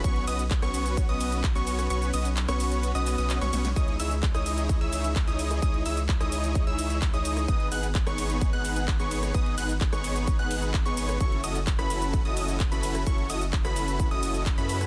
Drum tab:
RD |x-x-x-x-x-x-x-x-|x-x-x-x-x-x-x-x-|x-x---x-x-x-x-x-|x-x-x-x-x-x-x-x-|
HH |xxoxxxoxxxoxxxox|xxoxxxoxxxoxxxox|xxoxxxoxxxoxxxox|xxoxxxoxxxoxxxox|
SH |x-xxxxxxx-xxxxxx|xxxxxxxxxxxxxxxx|x-xxxxxxx-xxxxxx|x-xxxxxxx-xxxxxx|
CP |----x-------x---|----x-----x-x---|----x-------x---|----x-------x---|
SD |-----r---------r|-----r-------ooo|-----r---------r|-----r---------r|
BD |o---o---o---o---|----------------|o---o---o---o---|o---o---o---o---|

RD |x-x-x-x-x-x-x-x-|x-x-x-x-x-x-x-x-|x-x-x-x-x-x-x-x-|x-x-x-x-x-x-x-x-|
HH |xxoxxxoxxxoxxxox|xxoxxxoxxxoxxxox|xxoxxxoxxxoxxxox|xxoxxxoxxxoxxxox|
SH |x-xxxxxxx-xxxxxx|x-xxxxxxx-xxxxxx|x-xxxxxxx-xxxxxx|x-xxxxxxx-xxxxxx|
CP |----x-------x---|----x-------x---|----x-------x---|----x-------x---|
SD |-----r---------r|-----r---------r|-----r---------r|-----r---------r|
BD |o---o---o---o---|o---o---o---o---|o---o---o---o---|o---o---o---o---|